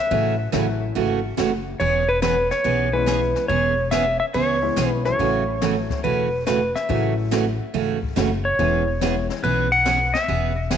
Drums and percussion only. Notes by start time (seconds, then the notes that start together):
0.11 brush sweep
0.53 snare, hi-hat pedal
0.95 brush sweep
1.38 snare, hi-hat pedal
1.80 brush sweep
2.22 snare, hi-hat pedal
2.51 snare
2.65 brush sweep
3.07 snare, hi-hat pedal
3.36 snare
3.49 brush sweep
3.92 snare, hi-hat pedal
4.34 brush sweep
4.77 snare, hi-hat pedal
5.05 snare
5.19 brush sweep
5.62 snare, hi-hat pedal
5.90 kick, snare
6.04 brush sweep
6.47 snare, hi-hat pedal
6.75 snare
6.89 brush sweep
7.32 snare, hi-hat pedal
7.74 brush sweep
8.03 kick
8.17 snare, hi-hat pedal
8.59 brush sweep
9.01 snare, hi-hat pedal
9.30 snare
9.43 brush sweep
9.85 snare, hi-hat pedal
10.15 snare
10.28 brush sweep
10.70 snare, hi-hat pedal